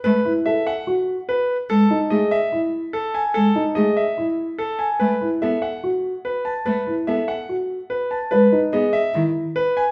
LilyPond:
<<
  \new Staff \with { instrumentName = "Grand piano" } { \time 4/4 \key b \mixolydian \tempo 4 = 145 b'8 r8 e''8 fis''8 r4 b'8 r8 | a'8 r8 dis''8 e''8 r4 a'8 gis''8 | a'8 r8 dis''8 e''8 r4 a'8 gis''8 | b'8 r8 e''8 fis''8 r4 b'8 a''8 |
b'8 r8 e''8 fis''8 r4 b'8 a''8 | b'8 r8 dis''8 e''8 r4 b'8 gis''8 | }
  \new Staff \with { instrumentName = "Grand piano" } { \time 4/4 \key b \mixolydian r8 e'8 a'8 r8 fis'8 r4. | r8 dis'8 gis'8 r8 e'8 r4. | r8 dis'8 gis'8 r8 e'8 r4. | r8 e'8 a'8 r8 fis'8 r4. |
r8 e'8 a'8 r8 fis'8 r4. | b'8 dis'8 gis'8 r8 e'8 r4. | }
  \new Staff \with { instrumentName = "Cello" } { \time 4/4 \key b \mixolydian a8 r2. r8 | gis8 r8 a8 r2 r8 | gis8 r8 a8 r2 r8 | a8 r8 b8 r2 r8 |
a8 r8 b8 r2 r8 | gis8 r8 b8 r8 dis8 r4. | }
>>